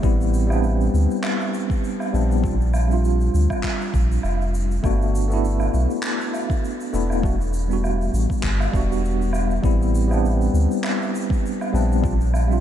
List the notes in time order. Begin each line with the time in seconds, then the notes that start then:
0.02 A1 G3 B3 C4 E4, kick, shaker
0.21 shaker
0.34 shaker
0.47 G3 B3 C4, low woodblock
0.51 D4, shaker
0.63 shaker
0.81 shaker
0.94 D2, shaker
1.11 shaker
1.23 clap, low woodblock, shaker
1.41 shaker
1.54 shaker
1.70 kick, shaker
1.84 shaker
2.00 low woodblock, shaker
2.13 A#1 G3 B3 C4 D4, shaker
2.31 shaker
2.42 G3 C4 D4 F4, kick, shaker
2.61 shaker
2.74 low woodblock, shaker
2.88 G3 C4 D4, shaker
2.93 F4
3.04 shaker
3.21 shaker
3.34 D2, shaker
3.50 kick, low woodblock, shaker
3.63 kick, clap, shaker
3.81 shaker
3.94 A#1, kick, shaker
4.12 shaker
4.23 F1, low woodblock, shaker
4.41 shaker
4.54 shaker
4.71 shaker
4.83 G1 A3 B3 D4 F#4, kick, low woodblock, shaker
5.02 shaker
5.15 shaker
5.28 A3 B3 D4, shaker
5.33 E4
5.45 shaker
5.60 low woodblock, shaker
5.74 B1, shaker
5.90 shaker
6.03 clap, shaker
6.21 shaker
6.34 low woodblock, shaker
6.50 kick, shaker
6.64 shaker
6.80 shaker
6.93 E1 A3 B3 D4 E4, shaker
7.10 low woodblock, shaker
7.22 G3 B3 D4 F#4, kick, shaker
7.41 shaker
7.53 shaker
7.68 G3 B3 D4, shaker
7.73 F#4
7.84 low woodblock, shaker
8.01 shaker
8.13 A1, shaker
8.30 kick, shaker
8.43 G1, kick, clap, shaker
8.60 low woodblock, shaker
8.71 E1 G3 B3 D4, kick, shaker
8.76 F#4
8.92 shaker
9.05 shaker
9.22 shaker
9.33 low woodblock, shaker
9.50 shaker
9.62 A1 G3 B3 C4 E4, kick, shaker
9.82 shaker
9.95 shaker
10.07 G3 B3 C4, low woodblock
10.12 D4, shaker
10.25 shaker
10.41 shaker
10.54 D2, shaker
10.71 shaker
10.84 clap, low woodblock, shaker
11.02 shaker
11.15 shaker
11.30 kick, shaker
11.46 shaker
11.61 low woodblock, shaker
11.72 A#1 G3 B3 C4 D4, shaker
11.92 shaker
12.02 G3 C4 D4 F4, kick, shaker
12.21 shaker
12.34 low woodblock, shaker
12.48 G3 C4 D4, shaker
12.53 F4